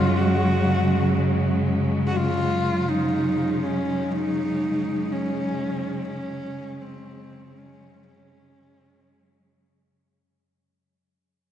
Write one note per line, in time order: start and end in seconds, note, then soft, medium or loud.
0.00 10.20 F#2 medium
0.00 10.10 C#3 medium
0.00 10.11 F#3 medium
0.00 10.20 F#3 medium
0.00 10.10 G#3 medium
0.00 0.19 F4 medium
0.18 1.16 F#4 medium
2.07 2.18 F#4 medium
2.17 2.90 F4 loud
2.89 3.65 D#4 loud
3.63 4.13 C#4 medium
4.12 5.13 D#4 loud
5.12 6.08 C#4 loud
6.09 6.83 C#4 loud
6.82 7.60 C4 medium
7.58 8.07 C#4 medium
8.07 9.56 C#4 medium